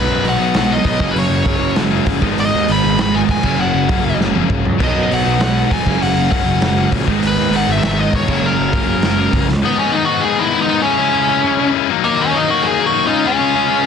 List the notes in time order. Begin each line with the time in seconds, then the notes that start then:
Already playing: B2 F#3 B3 D#4 B4
0.08 F#2
0.23 B1, open hi-hat
0.29 F#5
0.39 B1 B2 F#3 B3 D#4
0.54 B1 F#5, snare, open hi-hat
0.72 D#5
0.84 B1 B2 F#3 B3 D#4 D#5, kick, open hi-hat
0.99 F#1 F#2 C#3 F#3 A#3 C#4, kick
1.11 B4
1.16 F#1 C#5, open hi-hat
1.30 F#1
1.46 F#1 F#2 C#3 F#3 A#3 C#4, kick
1.60 F#1
1.76 F#1, snare, open hi-hat
1.91 F#2 C#3 F#3 A#3 C#4
2.06 F#1, kick, open hi-hat
2.21 G#1 G#2 D#3 G#3 B3 D#4, kick
2.38 G#1 D#5, open hi-hat
2.55 D#2
2.67 G#1 G#2 D#3 G#3 B3 D#4, open hi-hat
2.72 B5
2.85 G#1
2.98 G#1 B5, snare, open hi-hat
3.12 G#2 D#3 G#3 B3 D#4 G#5
3.28 F1 G#5, kick, open hi-hat
3.43 F#1 F#2 C#3 F#3 A#3 C#4, kick, crash
3.58 F#1 F#5
3.74 F#1
3.89 F#1 F#2 C#3 F#3 A#3 C#4, kick, open hi-hat
4.03 F#1
4.18 F#1, snare
4.33 F#2 C#3 F#3 A#3 C#4, high tom
4.50 F#1, kick, mid tom
4.64 C#2, floor tom
4.78 B1 B2 F#3 B3 D#4, kick, crash
4.84 D#5
4.94 F#2
5.11 B1 F#5, open hi-hat
5.24 B1 B2 F#3 B3 D#4
5.39 B1 F#5, snare, open hi-hat
5.70 E1 B2 F#3 B3 D#4 G#5, kick, open hi-hat
5.84 F#1 F#2 C#3 F#3 A#3 C#4, kick
6.02 F#1 F#5, open hi-hat
6.16 F#1
6.29 F#1 F#2 C#3 F#3 A#3 C#4 F#5, kick, open hi-hat
6.46 F#1
6.62 F#1, snare, open hi-hat
6.77 F#2 C#3 F#3 A#3 C#4
6.92 A#1, kick, open hi-hat
7.06 G#1 G#2 D#3 G#3 B3 D#4, kick
7.22 G#1, open hi-hat
7.27 B4
7.37 D#2
7.51 G#1 G#2 D#3 G#3 B3 D#4, open hi-hat
7.56 F#5
7.69 G#1 E5
7.82 G#1, snare, open hi-hat
7.97 G#2 D#3 G#3 B3 D#4 D#5
8.13 E1 C#5, kick, open hi-hat
8.27 F#1 F#2 C#3 F#3 A#3 C#4, kick, crash
8.42 F#1
8.46 A#4
8.58 F#1
8.73 F#1 F#2 C#3 F#3 A#3 C#4, kick, open hi-hat
8.87 F#1
9.02 F#1, snare, open hi-hat
9.17 F#2 C#3 F#3 A#3 C#4
9.33 F#1, kick, open hi-hat
9.49 C#2, snare
9.63 G#2 D#3 G#3 B3 D#4
9.79 G#2 D#3 G#3 B3 C#4 D#4
9.92 G#2 D#3 G#3 B3 D#4
9.96 D#4
10.05 G#3 B3 D#4 F#4
10.10 G#2 D#3
10.21 G#2 D#3 G#3 G#4
10.25 B3 D#4
10.39 G#2 D#3 G#3 B3 D#4 E4
10.54 G#2 D#3 G#3 B3 D#4
10.62 D#4
10.69 G#2 D#3 G#3 B3 D#4
10.82 C#3 G#3 C#4 E4
10.98 C#3 G#3 C#4 E4
11.12 C#3 G#3 C#4 E4
11.29 C#3 G#3 C#4 E4
11.44 C#3 G#3 C#4 E4
11.59 C#3 G#3 C#4 E4
11.76 C#3 G#3 C#4 E4
11.90 D#3 F#3 A#3 D#4
12.04 D#3 F#3 A#3 D#4
12.19 D#3 F#3 A#3 C#4 D#4
12.34 D#3 F#3 A#3 D#4
12.49 D#3 F#3 A#3 D#4 F#4
12.62 D#3 F#3 A#3 D#4 G#4
12.79 D#3 F#3 A#3 D#4
12.86 F#4
12.94 D#3 F#3 A#3 D#4
13.07 C#3 G#3 C#4 D#4 F4
13.24 C#3 G#3 C#4 F4
13.39 C#3 G#3 C#4 F4
13.55 C#3 G#3 C#4 F4
13.69 C#3 G#3 C#4 F4